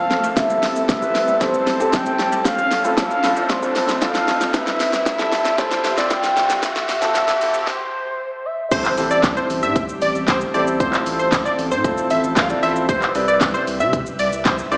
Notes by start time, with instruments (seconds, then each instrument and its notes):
Already playing: analog synth pad F3 A3 C4 A4, grand piano C4 F4 A4, soft synth lead F5, riser
0.11 synth arpeggio sound C4, snare, closed hi-hat, shaker
0.24 synth arpeggio sound A3, shaker
0.36 synth arpeggio sound A2, analog synth pad G3 C4, grand piano C4 E4 G4 A4, soft synth lead E5, kick, snare, closed hi-hat, shaker
0.50 synth arpeggio sound G3, shaker
0.63 snare, open hi-hat, shaker
0.76 shaker
0.89 soft synth lead E5, kick, snare, closed hi-hat, shaker
1.02 grand piano C4 E4 G4 B4, shaker
1.15 snare, open hi-hat, shaker
1.28 synth arpeggio sound G3, shaker
1.41 synth arpeggio sound A2, grand piano C4 E4 G4 A4, soft synth lead C5, kick, snare, closed hi-hat, shaker
1.54 shaker
1.67 synth arpeggio sound A3, snare, open hi-hat, shaker
1.80 grand piano C4 E4 G4 A4, synth arpeggio sound C4, shaker
1.93 synth arpeggio sound E4, soft synth lead G5, kick, snare, closed hi-hat, shaker
2.06 shaker
2.19 synth arpeggio sound A3, snare, open hi-hat, shaker
2.32 synth arpeggio sound G3, shaker
2.45 analog synth pad A2 F3 A3, synth arpeggio sound A2, soft synth lead F5, kick, snare, closed hi-hat, shaker
2.58 synth arpeggio sound F3, shaker
2.71 snare, open hi-hat, shaker
2.84 grand piano A2 C4 E4 F4 A4, shaker
2.97 soft synth lead F5, kick, snare, closed hi-hat, shaker
3.11 shaker
3.23 grand piano A2 C4 E4 F4 A4, snare, open hi-hat, shaker
3.37 synth arpeggio sound F3, shaker
3.49 synth arpeggio sound A2, soft synth lead C5, kick, snare, closed hi-hat, shaker
3.62 grand piano A2 C4 E4 F4 A4, shaker
3.75 synth arpeggio sound A3, snare, open hi-hat, shaker
3.89 synth arpeggio sound C4, snare, shaker
4.01 grand piano A2 C4 F4 A4, synth arpeggio sound E4, soft synth lead F5, kick, snare, closed hi-hat, shaker
4.15 snare, shaker
4.28 synth arpeggio sound A3, snare, open hi-hat, shaker
4.41 synth arpeggio sound F3, snare, shaker
4.54 synth arpeggio sound C3, analog synth pad G3 G4 E5, grand piano C4 E4 G4 B4, soft synth lead E5, kick, snare, closed hi-hat, shaker
4.67 synth arpeggio sound G3, snare, shaker
4.80 snare, open hi-hat, shaker
4.93 snare, shaker
5.06 soft synth lead E5, kick, snare, closed hi-hat, shaker
5.19 grand piano C4 E4 G4 A4, snare, shaker
5.32 snare, open hi-hat, shaker
5.45 synth arpeggio sound G3, snare, shaker
5.58 synth arpeggio sound C3, grand piano C4 E4 G4 A4, soft synth lead C5, kick, snare, closed hi-hat, shaker
5.71 snare, shaker
5.84 synth arpeggio sound B3, snare, open hi-hat, shaker
5.97 grand piano C4 E4 G4 D5, synth arpeggio sound C4, snare, shaker
6.10 synth arpeggio sound E4, soft synth lead G5, kick, snare, closed hi-hat, shaker
6.23 snare, shaker
6.37 synth arpeggio sound B3, snare, open hi-hat, shaker
6.50 synth arpeggio sound G3, snare, shaker
6.63 synth arpeggio sound F3, analog synth pad F3 A3 A4, soft synth lead E5, kick, snare, closed hi-hat, shaker
6.76 synth arpeggio sound A3, snare, shaker
6.89 snare, open hi-hat, shaker
7.02 grand piano C4 E4 F4 A4, snare, shaker
7.15 soft synth lead E5, snare, closed hi-hat, shaker
7.28 snare, shaker
7.41 grand piano C4 E4 F4 A4, open hi-hat, shaker
7.54 synth arpeggio sound A3, shaker
7.67 soft synth lead C5, kick, snare
8.46 soft synth lead E5
8.71 analog synth pad G3 A3 C4 G4, grand piano C4 E4 G4 A4 C5, digital synth lead C5, kick, closed hi-hat, crash, impact, shaker
8.85 clap, shaker
8.97 sub bass A1, grand piano C4 E4 G4 A4 C5, open hi-hat, shaker
9.11 digital synth lead D5, shaker
9.23 kick, snare, clap, closed hi-hat, shaker
9.37 digital synth lead C5, shaker
9.50 sub bass A1, open hi-hat, shaker
9.63 sub bass A2, digital synth lead E5, shaker
9.76 kick, closed hi-hat, shaker
9.89 shaker
10.02 sub bass A1, digital synth lead D5, open hi-hat, shaker
10.15 sub bass A1, shaker
10.28 digital synth lead C5, kick, snare, clap, closed hi-hat, shaker
10.41 shaker
10.54 sub bass A1, grand piano C4 E4 G4 A4 C5, digital synth lead D5, open hi-hat, shaker
10.67 shaker
10.80 analog synth pad F3 A4, grand piano C4 E4 F4 A4 C5, digital synth lead C5, kick, closed hi-hat, shaker
10.93 clap, shaker
11.06 sub bass A1, open hi-hat, shaker
11.19 digital synth lead C5, shaker
11.32 kick, snare, clap, closed hi-hat, shaker
11.45 digital synth lead D5, shaker
11.58 sub bass A1, open hi-hat, shaker
11.71 sub bass A2, digital synth lead C5, shaker
11.84 grand piano C4 E4 F4 A4 C5, kick, closed hi-hat, shaker
11.98 shaker
12.10 sub bass A1, grand piano C4 E4 F4 A4 C5, digital synth lead E5, open hi-hat, shaker
12.24 sub bass A1, shaker
12.36 digital synth lead F5, kick, snare, clap, closed hi-hat, shaker
12.50 grand piano C4 E4 F4 A4 D5, shaker
12.63 sub bass A1, grand piano C4 E4 F4 A4 C5, digital synth lead E5, open hi-hat, shaker
12.76 shaker
12.89 analog synth pad C3 G3 B4 E5, grand piano C4 E4 G4 B4 C5, digital synth lead C5, kick, closed hi-hat, shaker
13.02 clap, shaker
13.15 sub bass C2, grand piano C4 E4 G4 B4 D5, open hi-hat, shaker
13.28 digital synth lead D5, shaker
13.41 kick, snare, clap, closed hi-hat, shaker
13.54 digital synth lead C5, shaker
13.67 sub bass C2, open hi-hat, shaker
13.80 sub bass C3, digital synth lead E5, shaker
13.93 kick, closed hi-hat, shaker
14.06 shaker
14.19 sub bass C2, digital synth lead D5, open hi-hat, shaker
14.32 sub bass C2, shaker
14.45 digital synth lead C5, kick, snare, clap, closed hi-hat, shaker
14.58 shaker
14.71 sub bass C2, grand piano C4 E4 G4 B4 C5, digital synth lead D5, open hi-hat, shaker